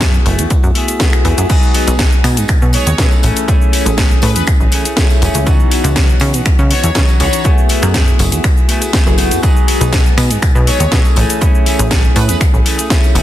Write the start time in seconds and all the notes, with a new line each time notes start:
Already playing: F#2 A3 B3 E4 F#4 G#4
0.00 A3 B3 E4 G#4, kick, snare, closed hi-hat, tambourine, shaker
0.13 B3 E4 G#4, tambourine, shaker
0.25 F#1 A3 B3 E4 G#4, open hi-hat, tambourine
0.38 E2, closed hi-hat, tambourine, shaker
0.50 kick, closed hi-hat, tambourine, shaker
0.63 F#2, tambourine, shaker
0.74 A3 B3 E4 G#4, open hi-hat, tambourine
0.88 closed hi-hat, tambourine, shaker
0.99 A3 B3 E4 F#4 G#4, kick, snare, closed hi-hat, shaker
1.12 B3 E4 G#4, finger snap, tambourine, shaker
1.24 E2 A3 B3 E4 G#4, open hi-hat, tambourine
1.37 F#2 B3 E4 G#4, closed hi-hat, tambourine, shaker
1.49 F#3 G#3 B3 D#4 F#4 G#4, kick, closed hi-hat, crash, tambourine, shaker
1.63 shaker
1.74 F#3 B3 D#4 G#4, open hi-hat, tambourine
1.87 B1 B3 D#4 G#4, closed hi-hat, tambourine, shaker
1.99 F#3 B3 D#4 G#4, kick, snare, closed hi-hat, tambourine, shaker
2.12 B3 D#4 G#4, shaker
2.24 B2, finger snap, open hi-hat, tambourine
2.37 G#2 B3 D#4 G#4, closed hi-hat, tambourine, shaker
2.48 B2, finger snap, kick, closed hi-hat, tambourine, shaker
2.61 B2 B3 D#4 G#4, shaker
2.73 F#3 B3 D#4 G#4 C#5, open hi-hat, tambourine
2.86 D#2 B3 D#4 G#4, closed hi-hat, tambourine, shaker
2.98 B2 F#3 A3 B3 C#4 D#4 E4 G#4 A4, kick, snare, closed hi-hat, tambourine, shaker
3.11 B3 D#4 G#4, tambourine, shaker
3.23 A1 E3 A3 C#4 G#4, open hi-hat, tambourine
3.36 closed hi-hat, tambourine, shaker
3.47 E3 A3 C#4 E4 G#4, kick, closed hi-hat, tambourine, shaker
3.62 shaker
3.72 E3 A3 C#4 G#4, open hi-hat, tambourine
3.85 A1 A3 C#4 G#4, closed hi-hat, tambourine, shaker
3.97 E3 A3 C#4 G#4, kick, snare, closed hi-hat, tambourine, shaker
4.10 A3 C#4 G#4, shaker
4.22 A2 B4, open hi-hat, tambourine
4.35 E2 A3 C#4 G#4 B4, closed hi-hat, tambourine, shaker
4.47 finger snap, kick, closed hi-hat, tambourine, shaker
4.59 A1 A3 C#4 G#4, shaker
4.71 E3 A3 C#4 G#4, open hi-hat, tambourine
4.84 A3 C#4 G#4, closed hi-hat, tambourine, shaker
4.96 E3 A3 C#4 E4 G#4, kick, snare, closed hi-hat, tambourine, shaker
5.09 A3 C#4 G#4, tambourine, shaker
5.21 E1 E3 A3 C#4 G#4, open hi-hat, tambourine
5.34 C#2, closed hi-hat, tambourine, shaker
5.46 E3 B3 C#4 D#4 F#4, kick, closed hi-hat, tambourine, shaker
5.60 shaker
5.70 E3 B3 D#4 F#4, open hi-hat, tambourine
5.83 C#2 D#4 F#4, closed hi-hat, tambourine, shaker
5.96 E3 B3 D#4 F#4, kick, snare, closed hi-hat, tambourine, shaker
6.08 B3 D#4 F#4, shaker
6.20 C#3, finger snap, open hi-hat, tambourine
6.33 B2 B3 D#4 F#4, closed hi-hat, tambourine, shaker
6.46 C#3, finger snap, kick, closed hi-hat, tambourine, shaker
6.58 C#3 B3 D#4 F#4, shaker
6.70 E3 B3 D#4 F#4 C#5, open hi-hat, tambourine
6.83 E2 B3 D#4 F#4, closed hi-hat, tambourine, shaker
6.95 C#3 E3 B3 C#4 D#4 F#4, kick, snare, closed hi-hat, tambourine, shaker
7.08 tambourine, shaker
7.19 C#2 E3 B3 D#4 F#4 C#5, open hi-hat, tambourine
7.33 closed hi-hat, tambourine, shaker
7.44 A3 B3 E4 F#4 G#4, kick, closed hi-hat, tambourine, shaker
7.58 shaker
7.69 A3 B3 E4 G#4, open hi-hat, tambourine
7.82 F#2 B3 E4 G#4, finger snap, closed hi-hat, tambourine, shaker
7.94 A3 B3 E4 G#4, kick, snare, closed hi-hat, tambourine, shaker
8.07 B3 E4 G#4, shaker
8.19 F#1, open hi-hat, tambourine
8.32 E2 B3 E4 G#4, closed hi-hat, tambourine, shaker
8.44 finger snap, kick, closed hi-hat, tambourine, shaker
8.56 B3 E4 G#4, shaker
8.68 A3 B3 E4 G#4, open hi-hat, tambourine
8.81 B3 E4 G#4, closed hi-hat, tambourine, shaker
8.93 A3 B3 E4 G#4, kick, snare, closed hi-hat, tambourine, shaker
9.06 F#1 A3 B3 E4 F#4 G#4, tambourine, shaker
9.17 A3 B3 E4 G#4, open hi-hat, tambourine
9.31 F#2, closed hi-hat, tambourine, shaker
9.43 F#3 G#3 B3 D#4 F#4 G#4, kick, closed hi-hat, tambourine, shaker
9.57 shaker
9.67 F#3 B3 D#4 G#4, open hi-hat, tambourine
9.80 B1 B3 D#4 G#4, closed hi-hat, tambourine, shaker
9.92 F#3 B3 D#4 G#4, kick, snare, closed hi-hat, tambourine, shaker
10.05 B3 D#4 G#4, shaker
10.17 B2, finger snap, open hi-hat, tambourine
10.29 G#2 B3 D#4 G#4, closed hi-hat, tambourine, shaker
10.42 B2, finger snap, kick, closed hi-hat, tambourine, shaker
10.54 B2 B3 D#4 G#4, shaker
10.66 F#3 B3 D#4 G#4 C#5, open hi-hat, tambourine
10.79 D#2 B3 D#4 G#4, closed hi-hat, tambourine, shaker
10.91 B2 F#3 A3 B3 C#4 D#4 E4 G#4 A4, kick, snare, closed hi-hat, tambourine, shaker
11.04 B3 D#4 G#4, tambourine, shaker
11.16 A1 E3 A3 C#4 G#4, open hi-hat, tambourine
11.30 closed hi-hat, tambourine, shaker
11.41 E3 A3 C#4 E4 G#4, kick, closed hi-hat, tambourine, shaker
11.55 shaker
11.65 E3 A3 C#4 G#4, open hi-hat, tambourine
11.78 A1 A3 G#4, closed hi-hat, tambourine, shaker
11.90 E3 A3 C#4 G#4, kick, snare, closed hi-hat, tambourine, shaker
12.03 A3 C#4 G#4, shaker
12.16 A2 B4, open hi-hat, tambourine
12.28 E2 A3 C#4 G#4 B4, closed hi-hat, tambourine, shaker
12.41 finger snap, kick, closed hi-hat, tambourine, shaker
12.53 A1 A3 C#4 G#4, shaker
12.65 E3 A3 C#4 G#4, open hi-hat, tambourine
12.78 A3 C#4 G#4, closed hi-hat, tambourine, shaker
12.90 E3 A3 C#4 E4 G#4, kick, snare, closed hi-hat, tambourine, shaker
13.04 tambourine, shaker
13.14 E1 E3 A3 C#4 G#4, open hi-hat, tambourine